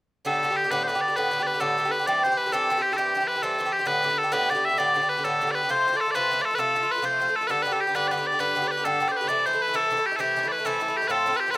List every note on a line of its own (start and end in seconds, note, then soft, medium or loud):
0.25 0.42 A2 medium
0.25 0.43 D3 medium
0.25 0.43 B3 medium
0.25 0.43 G4 medium
0.25 0.57 A4 medium
0.43 0.50 A2 medium
0.43 0.51 D3 medium
0.43 0.51 B3 medium
0.43 0.49 G4 medium
0.50 0.65 D3 soft
0.50 0.64 B3 soft
0.50 0.63 G4 soft
0.57 0.71 G4 medium
0.64 0.70 D3 soft
0.64 0.71 B3 soft
0.64 0.71 G4 medium
0.71 0.87 A2 medium
0.71 0.88 D3 medium
0.71 0.88 B3 medium
0.71 0.89 G4 medium
0.71 0.83 B4 medium
0.83 0.87 C5 medium
0.87 0.95 A2 soft
0.87 0.96 D3 medium
0.87 0.95 B3 medium
0.87 0.94 G4 medium
0.87 1.01 B4 medium
0.95 1.09 D3 soft
0.95 1.09 B3 soft
0.95 1.07 G4 medium
1.01 1.16 D5 medium
1.08 1.16 D3 soft
1.08 1.17 B3 soft
1.08 1.16 G4 soft
1.16 1.30 A2 medium
1.16 1.31 D3 medium
1.16 1.32 B3 medium
1.16 1.32 G4 medium
1.16 1.43 B4 medium
1.31 1.39 A2 medium
1.31 1.40 D3 soft
1.31 1.39 B3 soft
1.31 1.38 G4 medium
1.39 1.54 D3 soft
1.39 1.53 B3 soft
1.39 1.53 G4 soft
1.39 1.47 D5 medium
1.47 1.60 B4 medium
1.54 1.59 D3 soft
1.54 1.60 B3 soft
1.54 1.60 G4 soft
1.60 1.76 A2 medium
1.60 1.77 D3 medium
1.60 1.77 B3 medium
1.60 1.78 G4 medium
1.60 1.91 A4 medium
1.78 1.85 A2 medium
1.78 1.85 D3 medium
1.78 1.85 B3 medium
1.78 1.84 G4 medium
1.85 2.00 D3 soft
1.85 1.99 B3 soft
1.85 1.98 G4 soft
1.91 2.07 B4 medium
1.99 2.07 D3 soft
1.99 2.07 B3 soft
1.99 2.07 G4 medium
2.07 2.23 G2 medium
2.07 2.24 E3 medium
2.07 2.24 C4 medium
2.07 2.24 G4 medium
2.07 2.24 D5 medium
2.24 2.31 G2 soft
2.24 2.31 E3 medium
2.24 2.31 C4 medium
2.24 2.31 G4 medium
2.24 2.37 C5 medium
2.32 2.46 E3 soft
2.32 2.46 C4 soft
2.32 2.45 G4 medium
2.37 2.52 B4 medium
2.46 2.52 E3 soft
2.46 2.52 C4 soft
2.46 2.52 G4 soft
2.52 2.69 G2 medium
2.52 2.69 E3 medium
2.52 2.69 C4 medium
2.52 2.70 G4 medium
2.52 2.82 A4 loud
2.70 2.76 G2 medium
2.70 2.77 E3 medium
2.70 2.77 C4 medium
2.70 2.76 G4 medium
2.77 2.92 E3 soft
2.77 2.91 C4 soft
2.77 2.91 G4 medium
2.82 2.93 G4 medium
2.92 2.97 E3 soft
2.92 2.97 C4 soft
2.92 2.98 G4 soft
2.92 2.97 A4 medium
2.97 3.14 G2 medium
2.97 3.14 E3 medium
2.97 3.15 C4 medium
2.97 3.28 G4 medium
2.97 3.15 G4 medium
3.15 3.21 G2 medium
3.15 3.21 E3 medium
3.15 3.20 C4 medium
3.15 3.19 G4 medium
3.20 3.36 E3 soft
3.20 3.36 C4 soft
3.20 3.34 G4 soft
3.28 3.42 B4 medium
3.35 3.42 E3 soft
3.35 3.43 C4 soft
3.35 3.42 G4 soft
3.42 3.57 G2 medium
3.42 3.58 E3 medium
3.42 3.59 C4 medium
3.42 3.59 G4 medium
3.42 3.73 A4 medium
3.59 3.66 G2 medium
3.59 3.66 E3 medium
3.59 3.65 C4 medium
3.59 3.64 G4 medium
3.66 3.80 E3 soft
3.66 3.79 C4 soft
3.66 3.78 G4 soft
3.73 3.87 G4 medium
3.79 3.85 E3 soft
3.79 3.86 C4 soft
3.79 3.85 G4 soft
3.86 4.01 A2 medium
3.86 4.02 D3 medium
3.86 4.02 B3 medium
3.86 4.03 G4 medium
3.86 4.18 B4 loud
4.03 4.11 A2 medium
4.03 4.10 D3 medium
4.03 4.09 B3 medium
4.03 4.08 G4 medium
4.09 4.24 D3 soft
4.09 4.23 B3 soft
4.09 4.22 G4 soft
4.18 4.32 A4 medium
4.23 4.31 D3 soft
4.23 4.31 B3 soft
4.23 4.32 G4 medium
4.32 4.48 A2 medium
4.32 4.49 D3 medium
4.32 4.49 B3 medium
4.32 4.50 G4 medium
4.32 4.50 B4 loud
4.49 4.56 A2 soft
4.49 4.55 D3 soft
4.49 4.54 B3 medium
4.49 4.54 G4 medium
4.49 4.65 D5 medium
4.55 4.71 D3 soft
4.55 4.70 B3 soft
4.55 4.68 G4 medium
4.65 4.78 E5 medium
4.69 4.77 D3 soft
4.69 4.78 B3 soft
4.69 4.77 G4 soft
4.77 4.93 A2 medium
4.77 4.94 D3 medium
4.77 4.95 B3 medium
4.77 4.96 G4 medium
4.77 5.09 D5 loud
4.95 5.02 A2 soft
4.95 5.02 D3 medium
4.95 5.02 B3 medium
4.95 5.00 G4 soft
5.01 5.17 D3 soft
5.01 5.17 B3 soft
5.01 5.16 G4 soft
5.09 5.24 B4 medium
5.17 5.23 D3 soft
5.17 5.24 B3 soft
5.17 5.24 G4 soft
5.24 5.40 A2 medium
5.24 5.40 D3 medium
5.24 5.41 B3 medium
5.24 5.41 G4 medium
5.24 5.51 A4 medium
5.41 5.47 A2 medium
5.41 5.48 D3 medium
5.41 5.47 B3 medium
5.41 5.46 G4 medium
5.47 5.62 D3 soft
5.47 5.62 B3 soft
5.47 5.61 G4 soft
5.51 5.70 B4 medium
5.51 5.55 D5 medium
5.63 5.69 D3 soft
5.63 5.70 B3 soft
5.63 5.69 G4 soft
5.69 5.85 C3 medium
5.69 5.86 F3 medium
5.69 5.86 A3 medium
5.69 5.86 F4 medium
5.69 5.97 C5 loud
5.87 5.93 C3 medium
5.87 5.93 F3 medium
5.87 5.93 A3 medium
5.87 5.92 F4 medium
5.93 6.08 F3 soft
5.93 6.06 A3 soft
5.93 6.05 F4 soft
5.93 6.01 D5 medium
6.01 6.11 A4 medium
6.06 6.14 F3 soft
6.06 6.14 A3 soft
6.06 6.13 F4 soft
6.11 6.30 C3 medium
6.11 6.31 F3 medium
6.11 6.42 B4 loud
6.11 6.15 D5 loud
6.16 6.31 A3 medium
6.16 6.31 F4 medium
6.31 6.38 C3 medium
6.31 6.38 F3 medium
6.31 6.39 A3 medium
6.31 6.38 F4 medium
6.39 6.52 F3 soft
6.39 6.52 A3 soft
6.39 6.50 F4 soft
6.39 6.45 D5 medium
6.45 6.55 A4 medium
6.51 6.58 F3 soft
6.51 6.58 A3 soft
6.51 6.58 F4 soft
6.55 6.74 C3 medium
6.55 6.75 F3 medium
6.55 6.59 B4 loud
6.59 6.76 A3 medium
6.59 6.76 F4 medium
6.59 6.91 A4 loud
6.75 6.82 C3 soft
6.75 6.83 F3 medium
6.75 6.83 A3 medium
6.75 6.82 F4 soft
6.83 6.97 F3 soft
6.83 6.96 A3 soft
6.83 6.95 F4 medium
6.91 7.05 B4 medium
6.96 7.02 F3 soft
6.96 7.03 A3 soft
6.96 7.02 F4 soft
7.02 7.19 C3 medium
7.02 7.20 F3 medium
7.02 7.21 A3 medium
7.02 7.20 F4 medium
7.02 7.36 C5 medium
7.20 7.27 C3 medium
7.20 7.28 F3 soft
7.20 7.28 A3 medium
7.20 7.27 F4 medium
7.28 7.42 F3 soft
7.28 7.41 A3 soft
7.28 7.40 F4 soft
7.36 7.47 A4 medium
7.41 7.49 F3 soft
7.41 7.49 A3 soft
7.41 7.48 F4 soft
7.47 7.64 G2 medium
7.47 7.65 D3 medium
7.47 7.65 B3 medium
7.47 7.66 G4 medium
7.47 7.62 A4 medium
7.47 7.50 B4 medium
7.62 7.73 G2 soft
7.62 7.72 D3 medium
7.62 7.72 B4 medium
7.67 7.71 B3 medium
7.67 7.70 G4 medium
7.71 7.87 D3 soft
7.71 7.86 B3 soft
7.71 7.86 G4 soft
7.71 7.81 A4 medium
7.81 7.96 G4 medium
7.87 7.94 D3 soft
7.87 7.94 B3 soft
7.87 7.94 G4 soft
7.95 8.10 G2 medium
7.95 8.10 D3 medium
7.95 8.11 B3 medium
7.95 8.12 G4 medium
7.95 8.08 B4 medium
8.08 8.18 G2 medium
8.08 8.18 D3 medium
8.08 8.27 B4 medium
8.08 8.11 D5 medium
8.12 8.18 B3 medium
8.12 8.16 G4 medium
8.17 8.32 D3 soft
8.17 8.31 B3 soft
8.17 8.31 G4 medium
8.27 8.40 D5 medium
8.32 8.38 D3 soft
8.32 8.39 B3 soft
8.32 8.39 G4 soft
8.39 8.54 G2 medium
8.39 8.55 D3 medium
8.39 8.55 B3 medium
8.39 8.56 G4 medium
8.39 8.68 B4 medium
8.55 8.63 G2 soft
8.55 8.63 D3 medium
8.55 8.63 B3 medium
8.55 8.61 G4 medium
8.62 8.77 D3 soft
8.62 8.77 B3 soft
8.62 8.76 G4 soft
8.68 8.85 B4 medium
8.68 8.71 D5 medium
8.77 8.84 D3 soft
8.77 8.84 B3 soft
8.77 8.84 G4 soft
8.85 8.99 G2 medium
8.85 8.99 D3 medium
8.85 9.00 B3 medium
8.85 9.01 G4 medium
8.85 9.08 A4 medium
9.00 9.08 G2 medium
9.00 9.08 D3 medium
9.00 9.08 B3 medium
9.00 9.06 G4 medium
9.08 9.22 D3 soft
9.08 9.21 B3 soft
9.08 9.20 G4 soft
9.08 9.12 D5 medium
9.12 9.16 C5 medium
9.16 9.28 B4 medium
9.21 9.29 D3 soft
9.21 9.29 B3 soft
9.21 9.29 G4 soft
9.28 9.45 C3 medium
9.28 9.45 E3 medium
9.28 9.46 A3 medium
9.28 9.46 E4 medium
9.28 9.46 D5 loud
9.46 9.53 C3 medium
9.46 9.53 E3 medium
9.46 9.53 A3 medium
9.46 9.52 E4 medium
9.46 9.62 C5 medium
9.53 9.68 E3 soft
9.53 9.67 A3 soft
9.53 9.66 E4 soft
9.62 9.76 B4 medium
9.67 9.73 E3 soft
9.67 9.73 A3 soft
9.67 9.74 E4 soft
9.73 9.89 C3 medium
9.73 9.90 E3 medium
9.73 9.91 A3 medium
9.73 9.91 E4 medium
9.73 10.06 A4 loud
9.90 9.98 C3 medium
9.90 9.98 E3 medium
9.90 9.97 A3 medium
9.90 9.96 E4 medium
9.97 10.12 E3 soft
9.97 10.11 A3 medium
9.97 10.10 E4 medium
10.06 10.16 G4 medium
10.11 10.18 E3 soft
10.11 10.19 A3 soft
10.11 10.19 E4 soft
10.16 10.35 C3 medium
10.16 10.35 E3 medium
10.16 10.21 A4 medium
10.20 10.36 A3 medium
10.20 10.37 E4 medium
10.20 10.48 G4 medium
10.36 10.43 C3 soft
10.36 10.43 E3 medium
10.36 10.43 A3 medium
10.36 10.42 E4 medium
10.43 10.58 E3 soft
10.43 10.58 A3 soft
10.43 10.57 E4 soft
10.48 10.66 B4 medium
10.48 10.52 D5 medium
10.59 10.64 E3 soft
10.59 10.65 A3 soft
10.59 10.65 E4 soft
10.65 10.79 C3 medium
10.65 10.79 E3 medium
10.65 10.80 A3 medium
10.65 10.80 E4 medium
10.65 10.97 A4 medium
10.80 10.87 C3 medium
10.80 10.88 E3 medium
10.80 10.88 A3 medium
10.80 10.87 E4 medium
10.88 11.03 E3 soft
10.88 11.02 A3 soft
10.88 11.01 E4 medium
10.97 11.08 G4 medium
11.02 11.10 E3 soft
11.02 11.10 A3 soft
11.02 11.09 E4 soft
11.08 11.25 A2 medium
11.08 11.25 F3 medium
11.08 11.26 C4 medium
11.08 11.26 F4 medium
11.08 11.36 A4 medium
11.08 11.11 B4 medium
11.26 11.33 A2 medium
11.26 11.33 F3 medium
11.26 11.33 C4 medium
11.26 11.31 F4 medium
11.33 11.47 F3 soft
11.33 11.47 C4 soft
11.33 11.45 F4 soft
11.33 11.40 B4 medium
11.40 11.51 G4 medium
11.47 11.53 F3 soft
11.47 11.54 C4 soft
11.47 11.54 F4 soft
11.51 11.57 A2 medium
11.51 11.57 F3 medium
11.51 11.55 B4 medium